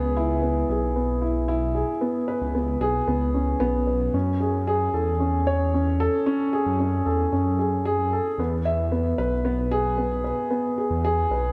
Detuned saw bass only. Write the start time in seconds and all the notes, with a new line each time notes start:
Already playing: C#2
0.69 B1
2.41 C#2
2.80 B1
3.07 C#2
3.34 C#2
3.60 B1
4.14 F#2
4.94 E2
6.66 F#2
7.06 E2
7.32 F#2
8.38 E2
9.18 B1
10.90 E2
11.30 B1